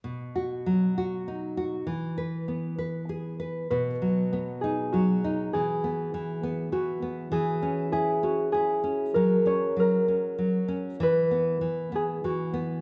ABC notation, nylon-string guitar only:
X:1
M:3/4
L:1/8
Q:1/4=98
K:B
V:1 name="Nylon-string guitar"
B,, F F, F D F | E, B B, B G B | B,, F, B, D F, D | E, B, E, B, E, B, |
E, C E C E C | F, C F, C F, C | E, B, E, B, E, B, |]